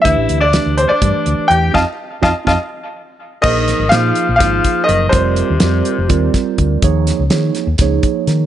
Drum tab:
CC |-------|-------|x------|-------|
HH |xxxxxxx|-------|-xxxxxx|xxxxxxx|
SD |--o----|o-oo---|-oo-o--|--o--o-|
BD |o---o--|o-oo---|o---oo-|o---ooo|

CC |-------|
HH |xxxxxxx|
SD |-oooo-o|
BD |o---oo-|